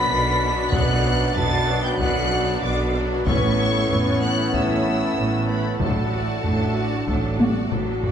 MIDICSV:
0, 0, Header, 1, 11, 480
1, 0, Start_track
1, 0, Key_signature, 2, "minor"
1, 0, Tempo, 634921
1, 553, Time_signature, 4, 2, 24, 8
1, 6136, End_track
2, 0, Start_track
2, 0, Title_t, "Violin section"
2, 0, Program_c, 0, 48
2, 0, Note_on_c, 0, 95, 127
2, 551, Note_on_c, 0, 90, 127
2, 553, Note_off_c, 0, 95, 0
2, 1026, Note_on_c, 0, 93, 123
2, 1032, Note_off_c, 0, 90, 0
2, 1389, Note_off_c, 0, 93, 0
2, 1393, Note_on_c, 0, 91, 100
2, 1499, Note_on_c, 0, 90, 122
2, 1513, Note_off_c, 0, 91, 0
2, 1976, Note_off_c, 0, 90, 0
2, 1989, Note_on_c, 0, 86, 100
2, 2226, Note_off_c, 0, 86, 0
2, 2475, Note_on_c, 0, 85, 127
2, 3163, Note_off_c, 0, 85, 0
2, 3190, Note_on_c, 0, 90, 112
2, 3430, Note_on_c, 0, 88, 96
2, 3431, Note_off_c, 0, 90, 0
2, 4141, Note_on_c, 0, 83, 90
2, 4151, Note_off_c, 0, 88, 0
2, 4382, Note_off_c, 0, 83, 0
2, 4384, Note_on_c, 0, 81, 97
2, 6040, Note_off_c, 0, 81, 0
2, 6136, End_track
3, 0, Start_track
3, 0, Title_t, "Flute"
3, 0, Program_c, 1, 73
3, 0, Note_on_c, 1, 83, 127
3, 547, Note_off_c, 1, 83, 0
3, 552, Note_on_c, 1, 78, 111
3, 1022, Note_off_c, 1, 78, 0
3, 1034, Note_on_c, 1, 81, 120
3, 1386, Note_off_c, 1, 81, 0
3, 1394, Note_on_c, 1, 79, 84
3, 1501, Note_off_c, 1, 79, 0
3, 1505, Note_on_c, 1, 78, 111
3, 1991, Note_on_c, 1, 74, 92
3, 2002, Note_off_c, 1, 78, 0
3, 2232, Note_off_c, 1, 74, 0
3, 2470, Note_on_c, 1, 73, 105
3, 3185, Note_on_c, 1, 78, 92
3, 3196, Note_off_c, 1, 73, 0
3, 3429, Note_on_c, 1, 76, 85
3, 3440, Note_off_c, 1, 78, 0
3, 4147, Note_on_c, 1, 71, 72
3, 4158, Note_off_c, 1, 76, 0
3, 4379, Note_off_c, 1, 71, 0
3, 4384, Note_on_c, 1, 69, 85
3, 6040, Note_off_c, 1, 69, 0
3, 6136, End_track
4, 0, Start_track
4, 0, Title_t, "Violin section"
4, 0, Program_c, 2, 48
4, 52, Note_on_c, 2, 71, 67
4, 56, Note_on_c, 2, 59, 76
4, 293, Note_on_c, 2, 74, 68
4, 294, Note_on_c, 2, 62, 72
4, 303, Note_off_c, 2, 71, 0
4, 305, Note_off_c, 2, 59, 0
4, 531, Note_on_c, 2, 59, 82
4, 531, Note_on_c, 2, 71, 80
4, 543, Note_off_c, 2, 62, 0
4, 543, Note_off_c, 2, 74, 0
4, 764, Note_off_c, 2, 59, 0
4, 764, Note_off_c, 2, 71, 0
4, 776, Note_on_c, 2, 62, 72
4, 777, Note_on_c, 2, 74, 74
4, 1024, Note_on_c, 2, 59, 79
4, 1025, Note_off_c, 2, 62, 0
4, 1025, Note_off_c, 2, 74, 0
4, 1026, Note_on_c, 2, 71, 75
4, 1266, Note_on_c, 2, 62, 74
4, 1268, Note_off_c, 2, 59, 0
4, 1268, Note_on_c, 2, 74, 74
4, 1269, Note_off_c, 2, 71, 0
4, 1497, Note_on_c, 2, 71, 74
4, 1500, Note_on_c, 2, 59, 73
4, 1509, Note_off_c, 2, 62, 0
4, 1510, Note_off_c, 2, 74, 0
4, 1727, Note_off_c, 2, 71, 0
4, 1729, Note_off_c, 2, 59, 0
4, 1746, Note_on_c, 2, 62, 75
4, 1749, Note_on_c, 2, 74, 74
4, 1989, Note_off_c, 2, 62, 0
4, 1990, Note_on_c, 2, 59, 73
4, 1990, Note_on_c, 2, 71, 67
4, 1991, Note_off_c, 2, 74, 0
4, 2226, Note_on_c, 2, 74, 69
4, 2228, Note_on_c, 2, 62, 74
4, 2231, Note_off_c, 2, 59, 0
4, 2231, Note_off_c, 2, 71, 0
4, 2466, Note_on_c, 2, 59, 80
4, 2469, Note_off_c, 2, 74, 0
4, 2469, Note_on_c, 2, 71, 79
4, 2470, Note_off_c, 2, 62, 0
4, 2692, Note_off_c, 2, 59, 0
4, 2693, Note_off_c, 2, 71, 0
4, 2718, Note_on_c, 2, 69, 70
4, 2719, Note_on_c, 2, 64, 72
4, 2946, Note_on_c, 2, 71, 72
4, 2950, Note_on_c, 2, 59, 75
4, 2955, Note_off_c, 2, 64, 0
4, 2955, Note_off_c, 2, 69, 0
4, 3189, Note_off_c, 2, 71, 0
4, 3191, Note_off_c, 2, 59, 0
4, 3193, Note_on_c, 2, 64, 67
4, 3198, Note_on_c, 2, 69, 65
4, 3426, Note_on_c, 2, 71, 63
4, 3428, Note_on_c, 2, 59, 61
4, 3432, Note_off_c, 2, 64, 0
4, 3435, Note_off_c, 2, 69, 0
4, 3652, Note_off_c, 2, 71, 0
4, 3653, Note_off_c, 2, 59, 0
4, 3668, Note_on_c, 2, 64, 65
4, 3669, Note_on_c, 2, 69, 61
4, 3904, Note_on_c, 2, 59, 60
4, 3910, Note_off_c, 2, 64, 0
4, 3910, Note_on_c, 2, 71, 62
4, 3911, Note_off_c, 2, 69, 0
4, 4147, Note_on_c, 2, 64, 57
4, 4148, Note_off_c, 2, 59, 0
4, 4151, Note_off_c, 2, 71, 0
4, 4152, Note_on_c, 2, 69, 56
4, 4388, Note_off_c, 2, 69, 0
4, 4390, Note_off_c, 2, 64, 0
4, 4397, Note_on_c, 2, 69, 58
4, 4398, Note_off_c, 2, 69, 0
4, 4398, Note_on_c, 2, 69, 60
4, 4619, Note_off_c, 2, 69, 0
4, 4632, Note_on_c, 2, 66, 56
4, 4632, Note_on_c, 2, 74, 54
4, 4871, Note_on_c, 2, 69, 56
4, 4872, Note_off_c, 2, 69, 0
4, 4872, Note_off_c, 2, 74, 0
4, 4872, Note_on_c, 2, 69, 61
4, 4873, Note_off_c, 2, 66, 0
4, 5107, Note_on_c, 2, 66, 54
4, 5107, Note_on_c, 2, 74, 56
4, 5113, Note_off_c, 2, 69, 0
4, 5345, Note_on_c, 2, 69, 52
4, 5346, Note_off_c, 2, 69, 0
4, 5346, Note_on_c, 2, 69, 53
4, 5350, Note_off_c, 2, 66, 0
4, 5350, Note_off_c, 2, 74, 0
4, 5573, Note_off_c, 2, 69, 0
4, 5584, Note_on_c, 2, 74, 53
4, 5586, Note_on_c, 2, 66, 54
4, 5829, Note_off_c, 2, 74, 0
4, 5830, Note_off_c, 2, 66, 0
4, 5831, Note_on_c, 2, 69, 50
4, 5833, Note_off_c, 2, 69, 0
4, 5833, Note_on_c, 2, 69, 54
4, 6074, Note_off_c, 2, 69, 0
4, 6084, Note_on_c, 2, 74, 64
4, 6088, Note_on_c, 2, 66, 63
4, 6136, Note_off_c, 2, 66, 0
4, 6136, Note_off_c, 2, 74, 0
4, 6136, End_track
5, 0, Start_track
5, 0, Title_t, "Woodwind section"
5, 0, Program_c, 3, 71
5, 0, Note_on_c, 3, 59, 90
5, 0, Note_on_c, 3, 66, 96
5, 0, Note_on_c, 3, 71, 95
5, 0, Note_on_c, 3, 74, 103
5, 2440, Note_off_c, 3, 74, 0
5, 2441, Note_off_c, 3, 66, 0
5, 2454, Note_off_c, 3, 59, 0
5, 2463, Note_on_c, 3, 59, 103
5, 2465, Note_on_c, 3, 64, 95
5, 2465, Note_on_c, 3, 69, 98
5, 2467, Note_on_c, 3, 73, 99
5, 2471, Note_off_c, 3, 71, 0
5, 4358, Note_off_c, 3, 59, 0
5, 4389, Note_off_c, 3, 64, 0
5, 4390, Note_off_c, 3, 73, 0
5, 4395, Note_on_c, 3, 78, 83
5, 4397, Note_on_c, 3, 57, 82
5, 4397, Note_on_c, 3, 74, 80
5, 6071, Note_off_c, 3, 69, 0
5, 6076, Note_off_c, 3, 57, 0
5, 6076, Note_off_c, 3, 74, 0
5, 6076, Note_off_c, 3, 78, 0
5, 6136, End_track
6, 0, Start_track
6, 0, Title_t, "French horn section"
6, 0, Program_c, 4, 60
6, 0, Note_on_c, 4, 62, 82
6, 0, Note_on_c, 4, 66, 87
6, 2440, Note_off_c, 4, 66, 0
6, 2441, Note_off_c, 4, 62, 0
6, 2472, Note_on_c, 4, 64, 91
6, 2475, Note_on_c, 4, 61, 93
6, 4255, Note_off_c, 4, 61, 0
6, 4255, Note_off_c, 4, 64, 0
6, 4384, Note_on_c, 4, 66, 64
6, 4386, Note_on_c, 4, 62, 63
6, 4812, Note_off_c, 4, 66, 0
6, 4813, Note_off_c, 4, 62, 0
6, 4863, Note_on_c, 4, 62, 79
6, 5559, Note_off_c, 4, 62, 0
6, 5582, Note_on_c, 4, 55, 79
6, 5828, Note_off_c, 4, 55, 0
6, 5843, Note_on_c, 4, 66, 69
6, 6136, Note_off_c, 4, 66, 0
6, 6136, End_track
7, 0, Start_track
7, 0, Title_t, "Viola section"
7, 0, Program_c, 5, 48
7, 0, Note_on_c, 5, 54, 71
7, 0, Note_on_c, 5, 59, 69
7, 82, Note_off_c, 5, 59, 0
7, 82, Note_on_c, 5, 50, 74
7, 83, Note_off_c, 5, 54, 0
7, 84, Note_on_c, 5, 62, 77
7, 312, Note_on_c, 5, 54, 80
7, 314, Note_on_c, 5, 59, 83
7, 318, Note_off_c, 5, 50, 0
7, 319, Note_off_c, 5, 62, 0
7, 549, Note_on_c, 5, 62, 77
7, 551, Note_on_c, 5, 50, 77
7, 553, Note_off_c, 5, 54, 0
7, 554, Note_off_c, 5, 59, 0
7, 774, Note_off_c, 5, 62, 0
7, 775, Note_off_c, 5, 50, 0
7, 792, Note_on_c, 5, 54, 75
7, 796, Note_on_c, 5, 59, 74
7, 1028, Note_on_c, 5, 62, 71
7, 1031, Note_on_c, 5, 50, 78
7, 1033, Note_off_c, 5, 54, 0
7, 1034, Note_off_c, 5, 59, 0
7, 1263, Note_on_c, 5, 54, 71
7, 1264, Note_on_c, 5, 59, 74
7, 1270, Note_off_c, 5, 62, 0
7, 1272, Note_off_c, 5, 50, 0
7, 1501, Note_on_c, 5, 62, 76
7, 1503, Note_on_c, 5, 50, 74
7, 1508, Note_off_c, 5, 54, 0
7, 1508, Note_off_c, 5, 59, 0
7, 1729, Note_off_c, 5, 62, 0
7, 1731, Note_off_c, 5, 50, 0
7, 1741, Note_on_c, 5, 59, 72
7, 1744, Note_on_c, 5, 54, 72
7, 1984, Note_on_c, 5, 50, 73
7, 1985, Note_on_c, 5, 62, 77
7, 1987, Note_off_c, 5, 59, 0
7, 1988, Note_off_c, 5, 54, 0
7, 2228, Note_off_c, 5, 50, 0
7, 2228, Note_on_c, 5, 59, 76
7, 2229, Note_off_c, 5, 62, 0
7, 2229, Note_on_c, 5, 54, 76
7, 2459, Note_off_c, 5, 59, 0
7, 2468, Note_on_c, 5, 59, 74
7, 2470, Note_off_c, 5, 54, 0
7, 2471, Note_on_c, 5, 61, 75
7, 2693, Note_off_c, 5, 59, 0
7, 2695, Note_off_c, 5, 61, 0
7, 2706, Note_on_c, 5, 59, 67
7, 2710, Note_on_c, 5, 57, 75
7, 2933, Note_off_c, 5, 59, 0
7, 2941, Note_on_c, 5, 61, 66
7, 2942, Note_on_c, 5, 59, 69
7, 2951, Note_off_c, 5, 57, 0
7, 3179, Note_off_c, 5, 59, 0
7, 3187, Note_off_c, 5, 61, 0
7, 3188, Note_on_c, 5, 59, 70
7, 3190, Note_on_c, 5, 57, 68
7, 3423, Note_off_c, 5, 59, 0
7, 3430, Note_on_c, 5, 61, 70
7, 3431, Note_off_c, 5, 57, 0
7, 3432, Note_on_c, 5, 59, 66
7, 3654, Note_off_c, 5, 61, 0
7, 3655, Note_off_c, 5, 59, 0
7, 3675, Note_on_c, 5, 57, 59
7, 3675, Note_on_c, 5, 59, 58
7, 3895, Note_off_c, 5, 59, 0
7, 3902, Note_on_c, 5, 61, 62
7, 3904, Note_on_c, 5, 59, 63
7, 3914, Note_off_c, 5, 57, 0
7, 4137, Note_off_c, 5, 59, 0
7, 4146, Note_on_c, 5, 59, 61
7, 4147, Note_off_c, 5, 61, 0
7, 4147, Note_on_c, 5, 57, 64
7, 4389, Note_off_c, 5, 59, 0
7, 4389, Note_on_c, 5, 62, 57
7, 4390, Note_off_c, 5, 57, 0
7, 4391, Note_on_c, 5, 54, 55
7, 4614, Note_off_c, 5, 62, 0
7, 4615, Note_off_c, 5, 54, 0
7, 4629, Note_on_c, 5, 57, 57
7, 4629, Note_on_c, 5, 66, 57
7, 4865, Note_on_c, 5, 62, 57
7, 4868, Note_on_c, 5, 54, 57
7, 4871, Note_off_c, 5, 57, 0
7, 4871, Note_off_c, 5, 66, 0
7, 5109, Note_off_c, 5, 62, 0
7, 5111, Note_off_c, 5, 54, 0
7, 5113, Note_on_c, 5, 57, 57
7, 5114, Note_on_c, 5, 66, 56
7, 5351, Note_on_c, 5, 62, 58
7, 5352, Note_on_c, 5, 54, 59
7, 5353, Note_off_c, 5, 57, 0
7, 5354, Note_off_c, 5, 66, 0
7, 5575, Note_off_c, 5, 62, 0
7, 5576, Note_off_c, 5, 54, 0
7, 5593, Note_on_c, 5, 57, 52
7, 5593, Note_on_c, 5, 66, 53
7, 5826, Note_on_c, 5, 62, 55
7, 5830, Note_on_c, 5, 54, 57
7, 5834, Note_off_c, 5, 57, 0
7, 5834, Note_off_c, 5, 66, 0
7, 6070, Note_off_c, 5, 62, 0
7, 6072, Note_off_c, 5, 54, 0
7, 6072, Note_on_c, 5, 57, 58
7, 6072, Note_on_c, 5, 66, 59
7, 6136, Note_off_c, 5, 57, 0
7, 6136, Note_off_c, 5, 66, 0
7, 6136, End_track
8, 0, Start_track
8, 0, Title_t, "Trombone section"
8, 0, Program_c, 6, 61
8, 0, Note_on_c, 6, 42, 90
8, 0, Note_on_c, 6, 59, 86
8, 2439, Note_off_c, 6, 42, 0
8, 2441, Note_off_c, 6, 59, 0
8, 2466, Note_on_c, 6, 45, 86
8, 2470, Note_on_c, 6, 59, 90
8, 4361, Note_off_c, 6, 59, 0
8, 4380, Note_on_c, 6, 57, 75
8, 6038, Note_off_c, 6, 57, 0
8, 6041, Note_off_c, 6, 45, 0
8, 6136, End_track
9, 0, Start_track
9, 0, Title_t, "Cello section"
9, 0, Program_c, 7, 48
9, 71, Note_on_c, 7, 47, 90
9, 495, Note_off_c, 7, 47, 0
9, 553, Note_on_c, 7, 47, 102
9, 976, Note_off_c, 7, 47, 0
9, 1030, Note_on_c, 7, 47, 100
9, 1454, Note_off_c, 7, 47, 0
9, 1504, Note_on_c, 7, 47, 97
9, 1932, Note_off_c, 7, 47, 0
9, 1985, Note_on_c, 7, 47, 83
9, 2412, Note_off_c, 7, 47, 0
9, 2471, Note_on_c, 7, 45, 100
9, 2895, Note_off_c, 7, 45, 0
9, 2946, Note_on_c, 7, 45, 88
9, 3372, Note_off_c, 7, 45, 0
9, 3423, Note_on_c, 7, 45, 84
9, 3851, Note_off_c, 7, 45, 0
9, 3904, Note_on_c, 7, 45, 74
9, 4331, Note_off_c, 7, 45, 0
9, 4385, Note_on_c, 7, 45, 77
9, 4812, Note_off_c, 7, 45, 0
9, 4862, Note_on_c, 7, 45, 73
9, 5291, Note_off_c, 7, 45, 0
9, 5351, Note_on_c, 7, 45, 71
9, 5776, Note_off_c, 7, 45, 0
9, 5835, Note_on_c, 7, 45, 68
9, 6136, Note_off_c, 7, 45, 0
9, 6136, End_track
10, 0, Start_track
10, 0, Title_t, "Double bass section"
10, 0, Program_c, 8, 48
10, 65, Note_on_c, 8, 35, 87
10, 492, Note_off_c, 8, 35, 0
10, 547, Note_on_c, 8, 35, 96
10, 973, Note_off_c, 8, 35, 0
10, 1025, Note_on_c, 8, 35, 91
10, 1452, Note_off_c, 8, 35, 0
10, 1503, Note_on_c, 8, 35, 101
10, 1931, Note_off_c, 8, 35, 0
10, 1984, Note_on_c, 8, 35, 89
10, 2411, Note_off_c, 8, 35, 0
10, 2469, Note_on_c, 8, 33, 91
10, 2894, Note_off_c, 8, 33, 0
10, 2941, Note_on_c, 8, 33, 83
10, 3370, Note_off_c, 8, 33, 0
10, 3426, Note_on_c, 8, 33, 88
10, 3852, Note_off_c, 8, 33, 0
10, 3907, Note_on_c, 8, 33, 77
10, 4333, Note_off_c, 8, 33, 0
10, 4386, Note_on_c, 8, 33, 76
10, 4813, Note_off_c, 8, 33, 0
10, 4865, Note_on_c, 8, 33, 70
10, 5293, Note_off_c, 8, 33, 0
10, 5347, Note_on_c, 8, 33, 77
10, 5774, Note_off_c, 8, 33, 0
10, 5833, Note_on_c, 8, 33, 62
10, 6136, Note_off_c, 8, 33, 0
10, 6136, End_track
11, 0, Start_track
11, 0, Title_t, "Taiko and cinematic ensemble drums"
11, 549, Note_on_c, 9, 41, 101
11, 624, Note_off_c, 9, 41, 0
11, 1028, Note_on_c, 9, 43, 65
11, 1104, Note_off_c, 9, 43, 0
11, 1508, Note_on_c, 9, 41, 89
11, 1583, Note_off_c, 9, 41, 0
11, 2468, Note_on_c, 9, 41, 103
11, 2544, Note_off_c, 9, 41, 0
11, 2946, Note_on_c, 9, 43, 65
11, 3021, Note_off_c, 9, 43, 0
11, 3430, Note_on_c, 9, 41, 87
11, 3506, Note_off_c, 9, 41, 0
11, 4388, Note_on_c, 9, 41, 96
11, 4464, Note_off_c, 9, 41, 0
11, 4873, Note_on_c, 9, 43, 65
11, 4948, Note_off_c, 9, 43, 0
11, 5352, Note_on_c, 9, 41, 86
11, 5428, Note_off_c, 9, 41, 0
11, 5593, Note_on_c, 9, 48, 91
11, 5669, Note_off_c, 9, 48, 0
11, 5835, Note_on_c, 9, 45, 90
11, 5911, Note_off_c, 9, 45, 0
11, 6074, Note_on_c, 9, 43, 82
11, 6136, Note_off_c, 9, 43, 0
11, 6136, End_track
0, 0, End_of_file